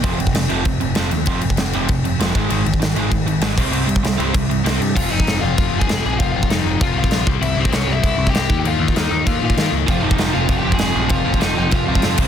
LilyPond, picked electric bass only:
\new Staff \with { instrumentName = "Picked electric bass" } { \clef bass \time 4/4 \key f \minor \tempo 4 = 195 f,,8 f,,8 f,,8 f,,8 f,,8 f,,8 f,,8 ees,8 | f,,8 f,,8 f,,8 f,,8 f,,4 f,,8 aes,,8 | aes,,8 aes,,8 aes,,8 aes,,8 aes,,8 aes,,8 aes,,8 c,8 | c,8 c,8 c,8 c,8 c,4 c,8 g,8 |
f,,8 f,,8 f,,8 f,,8 f,,8 f,,8 f,,8 bes,,8 | f,,8 f,,8 f,,8 f,,8 f,,8 c,8 bes,,8 c,8 | c,8 c,8 c,8 c,8 c,8 c,8 c,8 ees,8 | ees,8 ees,8 ees,8 ees,8 ees,8 bes,8 ees8 des,8 |
f,,8 f,,8 f,,8 f,,8 f,,8 f,,8 f,,8 bes,,8 | f,,8 f,,8 f,,8 f,,8 f,,8 c,8 f,8 c,8 | }